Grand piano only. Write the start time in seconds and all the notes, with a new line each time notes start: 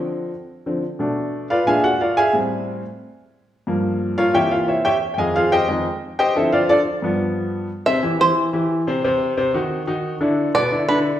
Already playing: D3 F3 C4
0.66 D3 F3 C4
0.99 B2 A3 D4
1.50 F4 B4 D5 F5
1.66 A#2 G#3 D4 G#4 E5 F5 G#5
1.84 F#4 F#5
2.01 F4 A#4 D5 F5
2.17 G#4 E5 F5 G#5
2.33 A2 G3 C4
3.67 G2 F3 A#3
4.18 F4 A#4 C#5 F5
4.34 C3 E3 A#3 G4 C#5 E5 G5
4.51 F4 F5
4.68 E4 C5 C#5 E5
4.85 G4 C#5 E5 G5
5.14 F2 G5
5.18 D#3 G#3 G#4 D#5 F5 G#5
5.36 F4 G#4 C5 F5
5.52 G4 C5 D#5 G5
5.68 F2 D#3 G#3 D#4 G#4 C5 D#5
6.19 G4 C5 D#5 G5
6.35 D3 F3 C4 E4 A4 C5 E5
6.52 F4 C5 D5 F5
6.69 D4 F4 A4 D5
7.02 G2 F3 B3
7.87 C3 C4 C5
8.03 E3 E4 G4
8.20 E3 E4 G4
8.53 E3 E4 G4
8.87 C3 C4 C5
9.04 C3 C4 C5
9.37 C3 C4 C5
9.54 D#3 D#4 F#4
9.87 D#3 D#4 F#4
10.21 D3 D4 E4
10.54 B2 B3 B4
10.71 D3 D4 E4
10.88 D3 D4 E4